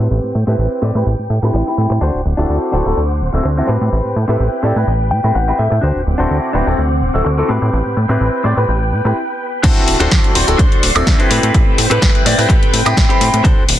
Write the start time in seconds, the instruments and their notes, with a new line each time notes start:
Already playing: clean electric guitar C4 G4 B4, string machine G5
0.11 analog synth bass A1
0.23 analog synth bass A2
0.35 analog synth bass A2
0.47 analog synth bass A2, clean electric guitar C4 G4 B4, grand piano C4 E4 G4 B4
0.58 analog synth bass A1
0.82 analog synth bass A2, clean electric guitar C4 G4 B4, grand piano C4 E4 G4 D5
0.95 analog synth bass A2, grand piano C4 E4 G4 B4
1.06 analog synth bass A1, muted clean electric guitar stroke
1.19 analog synth bass A2
1.30 analog synth bass A2
1.42 analog synth bass A2, grand piano C4 E4 G4 B4, muted clean electric guitar stroke
1.54 analog synth bass A1, muted clean electric guitar stroke
1.66 grand piano C4 E4 G4 B5, muted clean electric guitar stroke
1.78 analog synth bass A2
1.90 analog synth bass A2, muted clean electric guitar stroke
2.01 analog synth bass D2, clean electric guitar D4 F#4 C5, string machine C5 F#5 D6
2.14 analog synth bass D1
2.25 analog synth bass D1
2.37 analog synth bass D1, grand piano C4 E4 F#4 A4, clean electric guitar D4 F#4 D5
2.49 analog synth bass D2
2.72 analog synth bass D1, grand piano C4 E4 F#4 C5, clean electric guitar D4 F#4 A4
2.86 analog synth bass D1, grand piano C4 E4 F#4 A4
2.96 analog synth bass D2, muted clean electric guitar stroke
3.21 analog synth bass D1
3.33 analog synth bass D1, grand piano C4 E4 F#4 A4, muted clean electric guitar stroke
3.43 analog synth bass D2, muted clean electric guitar stroke
3.56 grand piano C4 E4 F#4 A4, muted clean electric guitar stroke
3.67 analog synth bass A2, clean electric guitar C4 G4 B4, string machine B4 G5
3.81 analog synth bass A2
3.92 analog synth bass A1
4.05 analog synth bass A2
4.16 analog synth bass A2
4.28 analog synth bass A2, clean electric guitar C4 G4 A4, grand piano C4 E4 G4 B4
4.39 analog synth bass A1
4.63 analog synth bass A2, clean electric guitar C4 G4 A4, grand piano C4 E4 G4 D5
4.76 analog synth bass A2, grand piano C4 E4 G4 B4
4.86 analog synth bass A1, muted clean electric guitar stroke
5.11 analog synth bass A2, clean electric guitar G5
5.23 analog synth bass A2, grand piano C4 E4 G4 B4, muted clean electric guitar stroke
5.34 analog synth bass A1, clean electric guitar F#5, muted clean electric guitar stroke
5.47 grand piano C4 E4 G4 B4, muted clean electric guitar stroke
5.59 analog synth bass A2, clean electric guitar E5
5.70 analog synth bass A2, muted clean electric guitar stroke
5.81 analog synth bass D2, string machine C4 F#5 D6, clean electric guitar D4 F#4 C5
5.96 analog synth bass D1
6.07 analog synth bass D1
6.18 analog synth bass D1, grand piano C4 E4 F#4 A4, clean electric guitar D4 F#4 C5
6.31 analog synth bass D2
6.53 analog synth bass D1, grand piano C4 E4 F#4 C5, clean electric guitar D4 F#4 B4
6.66 analog synth bass D1, grand piano C4 E4 F#4 A4
6.77 analog synth bass D2, muted clean electric guitar stroke
7.02 analog synth bass D1
7.14 analog synth bass D1, grand piano C4 E4 F#4 A4, muted clean electric guitar stroke
7.25 analog synth bass D2, muted clean electric guitar stroke
7.37 grand piano C4 E4 F#4 A4, muted clean electric guitar stroke
7.49 analog synth bass A2, clean electric guitar C4 G4 B4, string machine B4 G5
7.62 analog synth bass A2
7.73 analog synth bass A1
7.86 analog synth bass A2
7.97 analog synth bass A2
8.09 analog synth bass A2, clean electric guitar C4 G4 B4, grand piano C4 E4 G4 B4
8.21 analog synth bass A1
8.44 analog synth bass A2, grand piano C4 E4 G4 D5, clean electric guitar C4 G4 D5
8.57 analog synth bass A2, grand piano C4 E4 G4 B4
8.68 analog synth bass A1, muted clean electric guitar stroke
8.92 analog synth bass A2
9.04 analog synth bass A2, grand piano C4 E4 G4 B4, muted clean electric guitar stroke
9.63 analog synth bass D2, grand piano C4 E4 F#4 A4, clean electric guitar D4 F#4 A4 C5, string machine F#4 D5 C6, kick, closed hi-hat, crash
9.76 analog synth bass D1
9.87 analog synth bass D1, open hi-hat
10.00 analog synth bass D1, grand piano C4 E4 F#4 A4, clean electric guitar D4 F#4 A4 C5, closed hi-hat
10.11 analog synth bass D2, kick, snare, closed hi-hat
10.24 closed hi-hat
10.35 analog synth bass D1, grand piano C4 E4 F#4 C5, open hi-hat
10.47 analog synth bass D1, grand piano C4 E4 F#4 A4, closed hi-hat
10.58 analog synth bass D2, clean electric guitar D4 F#4 A4 C5, kick, closed hi-hat
10.72 analog synth bass D1, closed hi-hat
10.83 analog synth bass D1, open hi-hat
10.95 analog synth bass D1, grand piano C4 E4 F#4 A4, closed hi-hat, high woodblock
11.07 analog synth bass D2, kick, snare, closed hi-hat
11.19 grand piano C4 E4 G4 B4, clean electric guitar D4 F#4 A4 C5, closed hi-hat
11.29 analog synth bass A2, clean electric guitar C4 G4 A4 B4, string machine C4 B4 G5, open hi-hat
11.43 analog synth bass A2, closed hi-hat
11.54 analog synth bass A1, kick, closed hi-hat
11.67 analog synth bass A2
11.78 analog synth bass A2, open hi-hat
11.90 analog synth bass A2, clean electric guitar C4 G4 A4 B4, grand piano C4 E4 G4 B4, closed hi-hat
12.02 analog synth bass A1, kick, snare, closed hi-hat
12.15 closed hi-hat
12.25 analog synth bass A2, grand piano C4 E4 G4 D5, snare, open hi-hat
12.38 analog synth bass A2, grand piano C4 E4 G4 B4, open hi-hat
12.49 analog synth bass A1, clean electric guitar C4 G4 A4 B4, kick, closed hi-hat
12.62 analog synth bass A2, closed hi-hat
12.73 analog synth bass A2, open hi-hat
12.85 analog synth bass A2, grand piano C4 E4 G4 B4, closed hi-hat, high woodblock
12.97 analog synth bass A1, kick, snare, closed hi-hat
13.09 clean electric guitar C4 G4 A4 C5, grand piano C4 E4 G4 B5, closed hi-hat
13.21 analog synth bass A2, open hi-hat
13.33 analog synth bass A2, closed hi-hat
13.44 analog synth bass D2, clean electric guitar D4 F#4 A4 C5, string machine D4 C5 F#5, kick, closed hi-hat
13.57 analog synth bass D1
13.69 analog synth bass D1, open hi-hat